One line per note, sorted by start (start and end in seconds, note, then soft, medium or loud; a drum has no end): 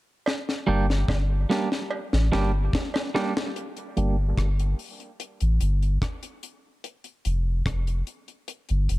0.26 snare medium
0.26 cowbell medium
0.49 snare soft
0.67 1.05 G1 medium
0.67 0.85 G3 medium
0.67 0.85 A#3 medium
0.67 0.86 D4 medium
0.67 0.86 G4 medium
0.90 snare medium
1.08 1.46 G1 medium
1.08 kick loud
1.08 snare medium
1.08 cowbell medium
1.50 1.68 G3 medium
1.50 1.68 A#3 medium
1.50 1.68 D4 medium
1.50 1.68 G4 medium
1.50 snare medium
1.72 snare medium
1.91 cowbell medium
2.13 2.31 A1 medium
2.13 snare medium
2.32 2.70 G1 medium
2.32 2.50 G3 medium
2.32 2.50 A#3 medium
2.32 2.50 D4 loud
2.32 2.51 G4 loud
2.32 snare medium
2.73 kick loud
2.73 snare medium
2.94 snare medium
2.94 cowbell medium
3.15 3.32 G3 medium
3.15 3.33 A#3 medium
3.15 3.33 D4 medium
3.15 3.33 G4 medium
3.15 snare loud
3.37 snare medium
3.56 closed hi-hat medium
3.77 closed hi-hat soft
3.97 4.34 G1 medium
3.97 4.15 G3 medium
3.97 4.15 A#3 medium
3.97 4.15 D4 medium
3.97 4.15 G4 medium
3.97 closed hi-hat medium
4.38 4.74 G1 loud
4.38 kick medium
4.38 cross-stick loud
4.38 closed hi-hat medium
4.59 closed hi-hat soft
4.79 open hi-hat soft
5.00 closed hi-hat soft
5.20 closed hi-hat medium
5.40 5.59 A1 medium
5.40 closed hi-hat soft
5.60 5.98 G1 medium
5.60 closed hi-hat medium
5.82 closed hi-hat soft
6.02 kick loud
6.02 cross-stick loud
6.02 closed hi-hat medium
6.23 closed hi-hat medium
6.43 closed hi-hat medium
6.84 closed hi-hat medium
7.04 closed hi-hat soft
7.25 7.62 F1 medium
7.25 closed hi-hat medium
7.66 8.03 F1 medium
7.66 kick loud
7.66 cross-stick loud
7.66 closed hi-hat medium
7.87 closed hi-hat soft
8.07 closed hi-hat medium
8.28 closed hi-hat soft
8.48 closed hi-hat medium
8.69 8.88 G1 medium
8.69 closed hi-hat soft
8.89 8.99 F1 medium
8.89 closed hi-hat medium